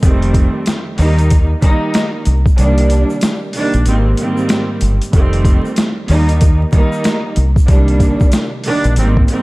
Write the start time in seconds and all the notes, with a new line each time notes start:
0.02 F1 F2 D#3 G3 A3 C4, kick, closed hi-hat, shaker
0.22 closed hi-hat
0.34 kick, closed hi-hat, shaker
0.66 snare, closed hi-hat, shaker
0.97 D#2 D#3 G3 A#3 D#4, open hi-hat, shaker
1.18 closed hi-hat, shaker
1.30 kick, closed hi-hat, shaker
1.61 D#3 G3 A#3 D#4, kick, closed hi-hat, shaker
1.94 snare, closed hi-hat, shaker
2.25 C2, closed hi-hat, shaker
2.46 kick, shaker
2.56 C2 D#3 G3 A#3 D4, closed hi-hat, shaker
2.78 closed hi-hat
2.90 closed hi-hat, shaker
3.10 shaker
3.21 snare, closed hi-hat, shaker
3.53 C2 D#3 G3 A#3 D4, open hi-hat, shaker
3.74 A#1, closed hi-hat, shaker
3.85 G#1 G#2 D#3 G3 A#3 C4, closed hi-hat, shaker
4.17 G#2 D#3 G3 A#3 C4, closed hi-hat, shaker
4.37 shaker
4.49 snare, closed hi-hat, shaker
4.81 G1, closed hi-hat, shaker
5.01 closed hi-hat, shaker
5.13 F1 F2 D#3 G3 A3 C4, kick, closed hi-hat, shaker
5.33 closed hi-hat
5.45 kick, closed hi-hat, shaker
5.65 shaker
5.76 snare, closed hi-hat, shaker
6.08 D#2 D#3 G3 A#3 D#4, open hi-hat, shaker
6.29 closed hi-hat, shaker
6.41 kick, closed hi-hat, shaker
6.72 D#3 G3 A#3 D#4, kick, closed hi-hat, shaker
6.92 shaker
7.04 snare, closed hi-hat, shaker
7.36 C2, closed hi-hat, shaker
7.56 kick, shaker
7.67 C2 D#3 G3 A#3 D4, kick, closed hi-hat, shaker
7.88 closed hi-hat
8.00 kick, closed hi-hat, shaker
8.20 kick, shaker
8.32 snare, closed hi-hat, shaker
8.64 C2 D#3 G3 A#3 D4, open hi-hat, shaker
8.84 A#1, closed hi-hat, shaker
8.96 G#1 G#2 D#3 G3 A#3 C4, closed hi-hat, shaker
9.17 kick
9.28 G#2 D#3 G3 A#3 C4, closed hi-hat, shaker